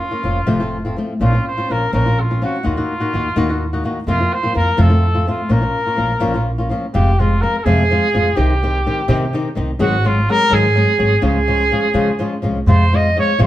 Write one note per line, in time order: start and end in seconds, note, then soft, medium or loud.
0.00 0.93 F4 medium
0.11 0.23 A#3 soft
0.11 0.23 C#4 soft
0.11 0.24 F4 soft
0.23 0.40 F1 medium
0.23 0.38 F3 soft
0.23 0.39 A#3 soft
0.23 0.39 C#4 soft
0.23 0.39 F4 soft
0.47 0.95 F1 medium
0.47 0.61 F2 medium
0.47 0.61 C3 medium
0.47 0.60 F3 medium
0.47 0.60 A3 medium
0.47 0.59 C4 medium
0.47 0.59 F4 medium
0.60 0.77 F3 soft
0.60 0.77 A3 soft
0.60 0.76 C4 soft
0.60 0.76 F4 medium
0.85 0.95 F3 soft
0.85 0.97 A3 soft
0.85 0.97 C4 soft
0.85 0.97 F4 soft
0.96 1.12 F3 soft
0.96 1.12 A3 soft
0.96 1.12 C4 soft
0.96 1.12 F4 soft
1.20 1.37 A#1 medium
1.20 1.34 A#2 medium
1.20 1.34 F3 medium
1.20 1.33 C4 medium
1.20 1.33 C#4 medium
1.20 1.46 F4 medium
1.20 1.32 F4 medium
1.33 1.50 C4 soft
1.33 1.50 C#4 soft
1.33 1.49 F4 soft
1.47 1.73 C5 medium
1.58 1.68 C4 soft
1.58 1.69 C#4 soft
1.58 1.70 F4 medium
1.69 1.86 A#1 medium
1.69 1.84 F3 soft
1.69 1.84 C4 soft
1.69 1.85 C#4 soft
1.69 1.85 F4 soft
1.69 1.93 A#4 medium
1.93 2.40 A#1 medium
1.93 2.06 A#2 medium
1.93 2.06 F3 medium
1.93 2.06 C4 medium
1.93 2.06 C#4 medium
1.93 2.04 F4 medium
1.93 2.22 A#4 medium
2.06 2.22 C4 soft
2.06 2.22 C#4 soft
2.06 2.21 F4 soft
2.20 2.43 F4 medium
2.30 2.40 C4 soft
2.30 2.41 C#4 soft
2.30 2.42 F4 soft
2.42 2.56 F3 soft
2.42 2.56 C4 soft
2.42 2.56 C#4 medium
2.42 2.57 F4 medium
2.42 2.65 F#4 medium
2.63 2.82 D#2 medium
2.63 2.77 D#3 medium
2.63 2.77 A#3 medium
2.63 2.77 D#4 medium
2.63 3.81 F4 medium
2.63 2.76 F#4 medium
2.77 2.93 A#3 soft
2.77 2.93 D#4 soft
2.77 2.93 F#4 medium
3.00 3.13 A#3 soft
3.00 3.13 D#4 soft
3.00 3.13 F#4 soft
3.13 3.29 D#2 medium
3.13 3.27 D#3 soft
3.13 3.28 A#3 soft
3.13 3.28 D#4 soft
3.13 3.28 F#4 medium
3.36 3.82 D#2 medium
3.36 3.49 D#3 medium
3.36 3.49 A#3 medium
3.36 3.49 D#4 medium
3.36 3.48 F#4 medium
3.49 3.65 A#3 soft
3.49 3.65 D#4 soft
3.49 3.64 F#4 medium
3.73 3.84 A#3 soft
3.73 3.84 D#4 soft
3.73 3.85 F#4 medium
3.84 3.98 D#3 medium
3.84 3.98 A#3 soft
3.84 3.99 D#4 soft
3.84 3.99 F#4 medium
4.07 4.23 F2 medium
4.07 4.20 F2 medium
4.07 4.20 C3 medium
4.07 4.20 F3 medium
4.07 4.20 A#3 medium
4.07 4.19 C4 medium
4.07 4.35 F4 medium
4.07 4.19 F4 medium
4.20 4.36 F3 soft
4.20 4.36 A#3 soft
4.20 4.35 C4 soft
4.20 4.35 F4 soft
4.33 4.56 C5 medium
4.43 4.53 F3 soft
4.43 4.54 A#3 soft
4.43 4.54 C4 medium
4.43 4.54 F4 soft
4.54 4.71 F2 medium
4.54 4.69 F3 soft
4.54 4.69 A#3 soft
4.54 4.69 C4 soft
4.54 4.69 F4 medium
4.54 4.82 A#4 medium
4.77 4.91 F2 medium
4.77 5.25 F2 medium
4.77 4.91 C3 medium
4.77 4.90 F3 medium
4.77 4.89 A3 medium
4.77 4.89 C4 medium
4.77 4.88 F4 medium
4.77 5.28 A4 medium
4.89 5.06 F3 soft
4.89 5.06 A3 soft
4.89 5.06 C4 soft
4.89 5.05 F4 medium
5.14 5.25 F3 soft
5.14 5.26 A3 soft
5.14 5.27 C4 soft
5.14 5.27 F4 soft
5.27 5.41 F3 soft
5.27 5.41 A3 soft
5.27 5.41 C4 soft
5.27 5.42 F4 medium
5.27 5.53 F4 medium
5.49 5.66 A#1 medium
5.49 5.62 A#2 medium
5.49 5.63 F3 medium
5.49 5.61 A#3 medium
5.49 5.61 C#4 medium
5.49 5.59 F4 medium
5.49 6.49 A#4 medium
5.60 5.78 A#3 soft
5.60 5.77 C#4 soft
5.60 5.77 F4 soft
5.86 5.96 A#3 soft
5.86 5.96 C#4 soft
5.86 5.97 F4 soft
5.97 6.14 A#1 medium
5.97 6.12 F3 soft
5.97 6.12 A#3 soft
5.97 6.12 C#4 soft
5.97 6.13 F4 medium
6.20 6.69 A#1 medium
6.20 6.34 A#2 medium
6.20 6.34 F3 medium
6.20 6.34 A#3 medium
6.20 6.34 C#4 medium
6.20 6.33 F4 medium
6.34 6.51 A#3 soft
6.34 6.50 C#4 soft
6.34 6.50 F4 medium
6.58 6.69 A#3 soft
6.58 6.70 C#4 soft
6.58 6.70 F4 soft
6.69 6.84 F3 soft
6.69 6.85 A#3 soft
6.69 6.85 C#4 medium
6.69 6.85 F4 medium
6.94 7.41 F1 medium
6.94 7.09 F2 medium
6.94 7.09 C3 medium
6.94 7.10 F3 medium
6.94 7.10 G#3 medium
6.94 7.10 C4 medium
6.94 7.10 F4 medium
6.94 7.21 G4 medium
7.19 7.33 F3 soft
7.19 7.34 G#3 medium
7.19 7.34 C4 medium
7.19 7.43 F4 medium
7.19 7.34 F4 soft
7.42 7.57 F3 soft
7.42 7.57 G#3 soft
7.42 7.57 C4 medium
7.42 7.57 F4 soft
7.42 7.58 A#4 medium
7.58 7.65 A#4 medium
7.64 7.97 F2 medium
7.64 7.81 F2 medium
7.64 7.81 C3 medium
7.64 7.82 F3 medium
7.64 7.82 G#3 medium
7.64 7.81 C4 medium
7.64 7.82 F4 medium
7.64 8.37 G#4 medium
7.90 8.05 F3 medium
7.90 8.05 G#3 medium
7.90 8.06 C4 medium
7.90 8.06 F4 medium
8.14 8.30 F1 medium
8.14 8.28 F3 medium
8.14 8.28 G#3 soft
8.14 8.29 C4 medium
8.14 8.29 F4 medium
8.36 8.84 C2 medium
8.36 8.52 C3 medium
8.36 8.53 D#3 medium
8.36 8.53 C4 medium
8.36 8.53 D#4 medium
8.36 9.56 G4 medium
8.36 8.53 G4 medium
8.63 8.77 D#3 medium
8.63 8.77 C4 soft
8.63 8.78 D#4 medium
8.63 8.77 G4 medium
8.86 9.00 D#3 soft
8.86 9.00 C4 medium
8.86 9.01 D#4 medium
8.86 9.01 G4 medium
9.08 9.24 C3 medium
9.08 9.40 C3 medium
9.08 9.24 D#3 medium
9.08 9.24 C4 medium
9.08 9.24 D#4 medium
9.08 9.25 G4 medium
9.33 9.47 D#3 medium
9.33 9.48 C4 medium
9.33 9.48 D#4 medium
9.33 9.48 G4 medium
9.55 9.72 C2 medium
9.55 9.70 D#3 soft
9.55 9.70 C4 soft
9.55 9.71 D#4 medium
9.55 9.71 G4 medium
9.79 10.26 G#1 medium
9.79 9.95 G#2 medium
9.79 9.95 D#3 medium
9.79 9.95 F#3 medium
9.79 9.95 G#3 medium
9.79 9.95 C4 medium
9.79 10.07 F#4 medium
9.79 9.95 G#4 medium
10.05 10.19 F#3 soft
10.05 10.19 G#3 medium
10.05 10.19 C4 medium
10.05 10.32 F4 medium
10.05 10.19 G#4 medium
10.29 10.42 F#3 soft
10.29 10.43 G#3 soft
10.29 10.43 C4 medium
10.29 10.43 G#4 medium
10.29 10.55 A#4 loud
10.50 10.66 G#2 medium
10.50 10.83 G#2 medium
10.50 10.66 D#3 medium
10.50 10.66 F#3 medium
10.50 10.66 G#3 medium
10.50 10.67 C4 medium
10.50 10.66 G#4 medium
10.50 11.24 G#4 medium
10.75 10.90 F#3 medium
10.75 10.90 G#3 soft
10.75 10.90 C4 medium
10.75 10.90 G#4 medium
10.98 11.14 G#1 medium
10.98 11.13 F#3 soft
10.98 11.13 G#3 soft
10.98 11.13 C4 medium
10.98 11.13 G#4 medium
11.22 11.69 C#2 medium
11.22 11.37 C#3 medium
11.22 11.38 F3 medium
11.22 11.38 G#3 medium
11.22 11.38 C#4 medium
11.22 11.38 F4 medium
11.22 12.41 G#4 medium
11.48 11.62 F3 medium
11.48 11.62 G#3 medium
11.48 11.62 C#4 medium
11.48 11.62 F4 medium
11.71 11.85 F3 soft
11.71 11.85 G#3 medium
11.71 11.86 C#4 medium
11.71 11.86 F4 medium
11.94 12.10 C#3 medium
11.94 12.26 C#3 medium
11.94 12.10 F3 medium
11.94 12.10 G#3 medium
11.94 12.10 C#4 medium
11.94 12.10 F4 medium
12.19 12.34 F3 medium
12.19 12.34 G#3 medium
12.19 12.34 C#4 medium
12.19 12.34 F4 medium
12.42 12.59 C2 medium
12.42 12.57 F3 soft
12.42 12.58 G#3 medium
12.42 12.58 C#4 medium
12.42 12.58 F4 medium
12.66 13.14 F2 medium
12.66 12.83 F2 medium
12.66 12.83 C3 medium
12.66 12.84 F3 medium
12.66 12.84 G#3 medium
12.66 12.84 C4 medium
12.66 12.84 F4 medium
12.66 12.97 C5 medium
12.93 13.07 F3 soft
12.93 13.07 G#3 medium
12.93 13.08 C4 medium
12.93 13.08 F4 medium
12.93 13.18 D#5 medium
13.16 13.30 F3 soft
13.16 13.31 G#3 medium
13.16 13.31 C4 medium
13.16 13.32 F4 soft
13.16 13.40 C#5 medium
13.38 13.47 F2 medium
13.38 13.47 C3 medium
13.38 13.47 F3 medium
13.38 13.47 G#3 medium
13.38 13.47 C4 medium
13.38 13.47 F4 medium
13.43 13.47 C5 medium